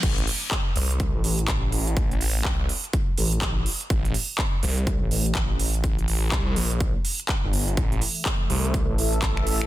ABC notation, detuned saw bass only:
X:1
M:4/4
L:1/16
Q:"Swing 16ths" 1/4=124
K:Aphr
V:1 name="Detuned saw bass" clef=bass
A,,,2 z4 C,,3 A,,, A,,,4 A,,,2- | A,,, A,,, A,,,2 C,,2 z4 A,,,4 z2 | A,,,2 z4 C,,3 A,,, A,,,4 A,,,2- | A,,, A,,, A,,,2 C,,2 B,,,3 z4 G,,,3 |
A,,,2 z4 C,,3 A,,, A,,,4 A,,,2 |]